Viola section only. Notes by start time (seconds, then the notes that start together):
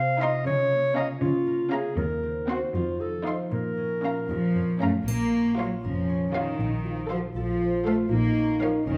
0.21 D#4
0.97 C#4
1.72 C#4
2.49 C4
3.26 D#4
4.04 C#4
4.82 C#4
5.58 F4
6.35 F4
7.10 A4
7.85 A4
8.61 A#4